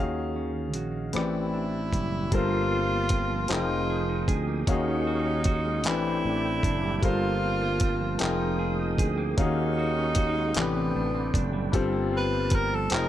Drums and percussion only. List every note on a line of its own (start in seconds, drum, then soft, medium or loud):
0.74 closed hi-hat medium
1.13 cross-stick medium
1.13 closed hi-hat medium
1.93 kick medium
1.93 closed hi-hat medium
2.32 kick loud
2.32 closed hi-hat medium
3.09 kick medium
3.09 closed hi-hat medium
3.48 clap loud
3.48 closed hi-hat medium
4.28 kick medium
4.28 closed hi-hat medium
4.67 kick loud
4.67 closed hi-hat medium
5.44 kick medium
5.44 closed hi-hat medium
5.84 clap loud
5.84 closed hi-hat medium
6.63 kick medium
6.63 closed hi-hat medium
7.03 kick loud
7.03 closed hi-hat medium
7.80 kick loud
7.80 closed hi-hat medium
8.19 clap loud
8.19 closed hi-hat medium
8.98 kick medium
8.98 closed hi-hat medium
9.38 kick loud
9.38 closed hi-hat medium
10.15 kick medium
10.15 closed hi-hat medium
10.54 clap loud
10.54 closed hi-hat medium
11.34 kick medium
11.34 closed hi-hat medium
11.73 kick loud
11.73 closed hi-hat medium
12.50 kick medium
12.50 closed hi-hat medium
12.90 clap loud
12.90 closed hi-hat medium